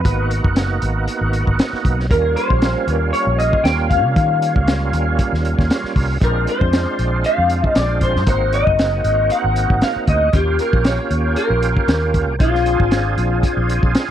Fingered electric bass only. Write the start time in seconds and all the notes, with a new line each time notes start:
0.05 G#1
0.45 F#1
0.82 G#1
1.21 G#1
1.48 G#1
1.73 muted fingered electric bass stroke
1.85 B1
2.11 D#2
2.50 A#1
2.87 D#2
3.27 A#1
3.64 D#2
4.04 C3
4.16 D#3
4.56 C#2
4.93 D#2
5.33 D#2
5.59 D#2
5.84 muted fingered electric bass stroke
5.96 C2
6.22 A#1
6.61 F2
6.99 A#1
7.38 F2
7.76 A#1
8.16 G2
8.27 G#1
8.67 F#1
9.05 G#1
9.44 G#1
9.70 G#1
9.96 muted fingered electric bass stroke
10.08 D2
10.34 D#2
10.73 A#1
11.11 D#2
11.50 A#1
11.88 D#2
12.28 C2
12.40 A#1
12.80 G#1
13.18 A#1
13.57 A#1
13.83 A#1